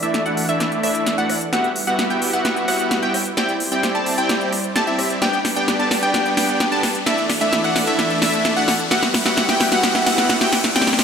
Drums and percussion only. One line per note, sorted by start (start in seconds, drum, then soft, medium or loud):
0.03 closed hi-hat medium
0.14 snare medium
0.14 closed hi-hat medium
0.26 closed hi-hat soft
0.37 open hi-hat loud
0.49 closed hi-hat medium
0.60 snare medium
0.60 closed hi-hat medium
0.72 closed hi-hat soft
0.83 cross-stick medium
0.83 open hi-hat loud
0.95 closed hi-hat medium
1.06 snare medium
1.06 closed hi-hat medium
1.18 closed hi-hat soft
1.30 cross-stick medium
1.30 open hi-hat loud
1.41 closed hi-hat medium
1.53 snare medium
1.53 closed hi-hat soft
1.64 closed hi-hat soft
1.76 open hi-hat loud
1.87 closed hi-hat soft
1.99 snare medium
1.99 closed hi-hat medium
2.10 closed hi-hat soft
2.22 open hi-hat loud
2.33 closed hi-hat soft
2.45 snare medium
2.45 closed hi-hat medium
2.56 closed hi-hat soft
2.68 cross-stick medium
2.68 open hi-hat loud
2.79 closed hi-hat medium
2.91 snare medium
2.91 closed hi-hat medium
3.03 closed hi-hat soft
3.14 cross-stick medium
3.14 open hi-hat loud
3.26 closed hi-hat soft
3.37 snare medium
3.37 closed hi-hat soft
3.49 closed hi-hat soft
3.60 open hi-hat loud
3.72 closed hi-hat medium
3.83 snare medium
3.83 closed hi-hat medium
3.95 closed hi-hat soft
4.06 open hi-hat loud
4.18 closed hi-hat soft
4.29 snare medium
4.29 closed hi-hat soft
4.41 closed hi-hat soft
4.52 cross-stick medium
4.52 open hi-hat loud
4.64 closed hi-hat medium
4.76 snare medium
4.76 closed hi-hat medium
4.87 closed hi-hat soft
4.99 cross-stick medium
4.99 open hi-hat loud
5.10 closed hi-hat soft
5.22 snare medium
5.22 closed hi-hat soft
5.33 closed hi-hat soft
5.45 snare medium
5.45 open hi-hat loud
5.56 closed hi-hat soft
5.68 snare medium
5.68 closed hi-hat medium
5.79 closed hi-hat soft
5.91 snare medium
5.91 open hi-hat loud
6.03 closed hi-hat soft
6.14 snare medium
6.14 closed hi-hat soft
6.26 closed hi-hat soft
6.37 snare medium
6.37 open hi-hat loud
6.49 closed hi-hat medium
6.60 snare medium
6.60 closed hi-hat medium
6.72 closed hi-hat soft
6.83 snare medium
6.83 open hi-hat loud
6.95 closed hi-hat soft
7.06 snare medium
7.06 closed hi-hat medium
7.18 closed hi-hat soft
7.29 snare medium
7.29 open hi-hat loud
7.41 closed hi-hat medium
7.53 snare medium
7.53 closed hi-hat medium
7.64 closed hi-hat soft
7.76 snare medium
7.76 open hi-hat loud
7.87 closed hi-hat medium
7.99 snare medium
7.99 closed hi-hat medium
8.10 closed hi-hat soft
8.22 snare medium
8.22 open hi-hat loud
8.33 closed hi-hat medium
8.45 snare medium
8.45 closed hi-hat medium
8.56 closed hi-hat soft
8.68 snare medium
8.68 open hi-hat loud
8.80 closed hi-hat medium
8.91 snare medium
8.91 closed hi-hat medium
9.03 snare medium
9.03 closed hi-hat soft
9.14 snare loud
9.14 open hi-hat loud
9.26 snare medium
9.26 closed hi-hat medium
9.37 snare loud
9.37 closed hi-hat medium
9.49 snare medium
9.49 closed hi-hat soft
9.60 snare loud
9.60 open hi-hat loud
9.72 snare medium
9.72 closed hi-hat medium
9.83 snare loud
9.83 closed hi-hat medium
9.95 snare medium
9.95 closed hi-hat soft
10.06 snare loud
10.06 open hi-hat loud
10.18 snare medium
10.18 closed hi-hat medium
10.29 snare loud
10.29 closed hi-hat medium
10.41 snare medium
10.41 closed hi-hat soft
10.53 snare loud
10.53 open hi-hat loud
10.64 snare medium
10.64 closed hi-hat medium
10.76 snare loud
10.76 closed hi-hat medium
10.81 snare medium
10.87 snare medium
10.87 closed hi-hat soft
10.93 snare medium
10.99 snare loud
10.99 open hi-hat loud